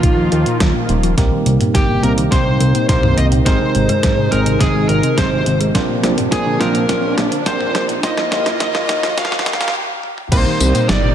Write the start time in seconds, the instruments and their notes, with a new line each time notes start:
Already playing: supersaw synth D#3 F3 A#3 F4, lead electric guitar F4
0.03 analog synth bass D#2, synth arpeggio sound A#2, kick, closed hi-hat
0.18 synth arpeggio sound F3
0.32 analog synth bass D#2, closed hi-hat
0.46 synth arpeggio sound A#2, closed hi-hat
0.60 analog synth bass D#2, synth arpeggio sound A#3, kick, snare, closed hi-hat
0.75 synth arpeggio sound A#2
0.89 analog synth bass D#1, synth arpeggio sound A#2, closed hi-hat
1.03 synth arpeggio sound F3, closed hi-hat
1.17 analog synth bass C2, synth arpeggio sound A#2, supersaw synth C3 A#3 D#4, tine electric piano A#3 C4 D#4 G4 A#4, kick, snare, closed hi-hat, riser
1.32 synth arpeggio sound D#3
1.46 analog synth bass C2, closed hi-hat
1.60 synth arpeggio sound A#2, closed hi-hat, mid tom
1.75 analog synth bass G1, synth arpeggio sound G3, lead electric guitar G4, kick, snare, closed hi-hat
1.89 synth arpeggio sound A#2
2.03 analog synth bass C2, synth arpeggio sound A#2, tine electric piano A#3 C4 D#4 G4 A#4, lead electric guitar A#4, closed hi-hat
2.17 synth arpeggio sound D#3, closed hi-hat
2.32 analog synth bass C2, lead electric guitar C5, kick, snare, closed hi-hat
2.46 synth arpeggio sound A#2
2.60 analog synth bass C2, synth arpeggio sound G3, closed hi-hat
2.75 synth arpeggio sound A#2, closed hi-hat
2.89 analog synth bass C2, synth arpeggio sound A#2, tine electric piano A#3 C4 D#4 G4 A#4, lead electric guitar C5, kick, snare, closed hi-hat
3.03 synth arpeggio sound D#3, mid tom
3.17 analog synth bass C2, lead electric guitar D#5, closed hi-hat
3.32 synth arpeggio sound A#2, closed hi-hat
3.46 analog synth bass G#1, supersaw synth C3 D#3 G#3, tine electric piano G#3 C4 D#4 G#4 A#4, synth arpeggio sound C4, lead electric guitar C5, kick, snare, closed hi-hat
3.61 synth arpeggio sound C3
3.75 analog synth bass G#1, synth arpeggio sound C3, closed hi-hat
3.89 synth arpeggio sound G#3, closed hi-hat, mid tom
4.03 analog synth bass G#2, kick, snare, closed hi-hat
4.18 synth arpeggio sound C3
4.31 analog synth bass G#1, tine electric piano G#3 C4 D#4 G#4 C5, synth arpeggio sound C4, lead electric guitar A#4, closed hi-hat
4.46 synth arpeggio sound C3, closed hi-hat
4.60 analog synth bass G#1, synth arpeggio sound C3, lead electric guitar G#4, kick, snare, closed hi-hat
4.75 synth arpeggio sound G#3
4.89 analog synth bass G#1, lead electric guitar A#4, closed hi-hat
5.03 synth arpeggio sound C3, closed hi-hat
5.18 analog synth bass G#1, synth arpeggio sound C4, lead electric guitar C5, kick, snare, closed hi-hat
5.32 synth arpeggio sound C3
5.46 analog synth bass G#1, synth arpeggio sound C3, closed hi-hat
5.61 synth arpeggio sound G#3, closed hi-hat
5.75 analog synth bass A#1, supersaw synth F3 A#3 D4, tine electric piano C4 D4 F4 A#4 C5, kick, snare, closed hi-hat
5.89 synth arpeggio sound A#2
6.03 analog synth bass A#1, synth arpeggio sound F3, snare, closed hi-hat
6.18 synth arpeggio sound A#2, closed hi-hat, mid tom
6.32 synth arpeggio sound A#2, analog synth bass A#2, lead electric guitar G#4, kick, snare, closed hi-hat
6.46 synth arpeggio sound D3
6.60 analog synth bass A#1, tine electric piano C4 D4 F4 A#4 C5, lead electric guitar A#4, snare, closed hi-hat
6.75 synth arpeggio sound A#2, closed hi-hat
6.89 analog synth bass A#1, synth arpeggio sound F3, kick, snare, closed hi-hat
7.03 synth arpeggio sound A#2
7.17 analog synth bass A#1, synth arpeggio sound A#2, snare, closed hi-hat
7.32 synth arpeggio sound D3, closed hi-hat
7.46 analog synth bass A#1, tine electric piano C4 D4 F4 A#4 C5, lead electric guitar C5, kick, snare, closed hi-hat
7.60 synth arpeggio sound A#2, mid tom
7.75 analog synth bass A#1, synth arpeggio sound F3, lead electric guitar C5, snare, closed hi-hat
7.89 synth arpeggio sound A#2, closed hi-hat
8.03 analog synth bass D#2, synth arpeggio sound A#2, supersaw synth D#3 A#3 F4, tine electric piano A#3 D#4 F4 A#4 C5, lead electric guitar D#5, kick, snare, closed hi-hat
8.18 synth arpeggio sound F3, snare
8.32 analog synth bass D#2, snare, closed hi-hat
8.46 synth arpeggio sound A#2, snare, closed hi-hat, mid tom
8.60 analog synth bass D#1, synth arpeggio sound A#3, lead electric guitar D#5, kick, snare, closed hi-hat
8.75 synth arpeggio sound A#2, snare
8.89 analog synth bass D#2, synth arpeggio sound A#2, tine electric piano A#3 D#4 F4 A#4 D#5, snare, closed hi-hat
9.03 synth arpeggio sound F3, snare, closed hi-hat
9.17 analog synth bass D#2, lead electric guitar F5, kick, snare, closed hi-hat
9.25 snare
9.32 synth arpeggio sound A#2, snare
9.39 snare
9.46 analog synth bass D#2, synth arpeggio sound A#3, snare, closed hi-hat
9.53 snare
9.60 synth arpeggio sound A#2, tine electric piano A#3 D#4 F4 A#4 F5, snare, closed hi-hat
9.68 snare
10.03 high tom
10.18 mid tom
10.31 analog synth bass C2, synth arpeggio sound A#2, supersaw synth C3 G3 A#3 D#4, tine electric piano A#3 C4 D#4 G4 A#4, lead electric guitar C5, kick, closed hi-hat, crash, tambourine
10.46 synth arpeggio sound D#3
10.60 analog synth bass C2, closed hi-hat, tambourine
10.75 synth arpeggio sound A#2, closed hi-hat, tambourine
10.89 analog synth bass G1, synth arpeggio sound G3, lead electric guitar D5, snare, closed hi-hat, tambourine
11.03 synth arpeggio sound A#2